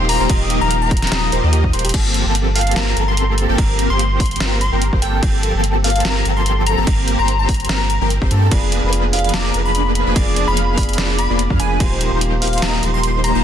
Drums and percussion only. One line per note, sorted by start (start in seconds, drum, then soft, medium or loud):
0.09 open hi-hat loud
0.30 kick loud
0.30 closed hi-hat medium
0.30 crash soft
0.50 closed hi-hat medium
0.71 closed hi-hat medium
0.91 kick loud
0.91 closed hi-hat medium
0.97 closed hi-hat medium
1.02 snare soft
1.02 closed hi-hat soft
1.07 closed hi-hat medium
1.12 snare loud
1.12 closed hi-hat medium
1.12 crash soft
1.32 closed hi-hat medium
1.53 closed hi-hat medium
1.64 kick medium
1.73 closed hi-hat medium
1.79 closed hi-hat medium
1.85 closed hi-hat medium
1.89 closed hi-hat medium
1.94 kick loud
1.94 closed hi-hat medium
1.94 crash loud
1.94 crash soft
2.14 closed hi-hat medium
2.35 closed hi-hat medium
2.56 open hi-hat medium
2.61 closed hi-hat medium
2.67 closed hi-hat medium
2.71 closed hi-hat medium
2.76 snare loud
2.76 closed hi-hat medium
2.76 crash soft
2.97 closed hi-hat medium
3.17 closed hi-hat medium
3.38 closed hi-hat medium
3.58 kick loud
3.58 closed hi-hat medium
3.58 crash soft
3.79 closed hi-hat medium
3.99 closed hi-hat medium
4.20 kick loud
4.20 open hi-hat loud
4.26 closed hi-hat medium
4.31 closed hi-hat soft
4.36 closed hi-hat medium
4.40 snare loud
4.40 closed hi-hat medium
4.40 crash soft
4.61 closed hi-hat medium
4.82 closed hi-hat medium
4.93 kick medium
5.02 closed hi-hat medium
5.23 kick loud
5.23 closed hi-hat medium
5.23 crash soft
5.43 closed hi-hat medium
5.64 closed hi-hat medium
5.84 open hi-hat medium
5.90 closed hi-hat medium
5.96 closed hi-hat soft
6.00 closed hi-hat medium
6.05 snare loud
6.05 crash soft
6.25 closed hi-hat medium
6.46 closed hi-hat medium
6.67 closed hi-hat medium
6.87 kick loud
6.87 closed hi-hat medium
6.87 crash soft
7.08 closed hi-hat medium
7.28 closed hi-hat medium
7.49 kick loud
7.49 open hi-hat medium
7.54 closed hi-hat medium
7.60 closed hi-hat soft
7.65 closed hi-hat medium
7.69 snare loud
7.69 closed hi-hat medium
7.69 crash soft
7.90 closed hi-hat medium
8.10 closed hi-hat medium
8.22 kick medium
8.31 closed hi-hat medium
8.51 kick loud
8.51 closed hi-hat medium
8.51 crash medium
8.72 closed hi-hat medium
8.93 closed hi-hat medium
9.13 open hi-hat loud
9.19 closed hi-hat medium
9.24 closed hi-hat soft
9.29 closed hi-hat medium
9.34 snare loud
9.34 closed hi-hat medium
9.34 crash soft
9.54 closed hi-hat medium
9.75 closed hi-hat medium
9.95 closed hi-hat medium
10.16 kick loud
10.16 closed hi-hat medium
10.16 crash medium
10.36 closed hi-hat medium
10.57 closed hi-hat medium
10.78 kick loud
10.78 open hi-hat loud
10.83 closed hi-hat medium
10.89 closed hi-hat soft
10.93 closed hi-hat medium
10.98 snare loud
10.98 closed hi-hat medium
10.98 crash soft
11.19 closed hi-hat medium
11.39 closed hi-hat medium
11.50 kick medium
11.60 closed hi-hat medium
11.80 kick loud
11.80 closed hi-hat medium
11.80 crash soft
12.01 closed hi-hat medium
12.21 closed hi-hat medium
12.42 open hi-hat loud
12.47 closed hi-hat medium
12.53 closed hi-hat soft
12.58 closed hi-hat medium
12.62 snare loud
12.62 closed hi-hat medium
12.62 crash soft
12.83 closed hi-hat medium
13.03 closed hi-hat medium
13.24 closed hi-hat medium